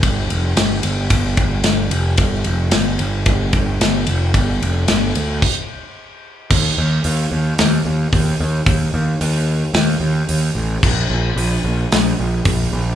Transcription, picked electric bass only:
\new Staff \with { instrumentName = "Picked electric bass" } { \clef bass \time 4/4 \key g \minor \tempo 4 = 111 g,,8 f,,8 g,,8 g,,8 g,,8 g,,8 g,,8 f,,8 | g,,8 f,,8 g,,8 g,,8 g,,8 g,,8 g,,8 f,,8 | g,,8 f,,8 g,,8 d,8 r2 | ees,8 ees,8 ees,8 ees,8 ees,8 ees,8 ees,8 ees,8 |
ees,8 ees,8 ees,4 ees,8 ees,8 ees,8 a,,8 | bes,,8 bes,,8 bes,,8 bes,,8 bes,,8 bes,,8 bes,,8 bes,,8 | }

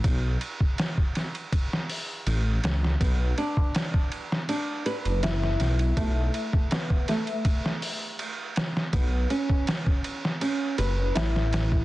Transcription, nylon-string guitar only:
\new Staff \with { instrumentName = "Nylon-string guitar" } { \time 4/4 \key b \minor \tempo 4 = 81 r1 | b8 d'8 r4 d'8 b'8 e'4 | a8 r8 b8 a8 r2 | b8 cis'8 r4 cis'8 b'8 e'4 | }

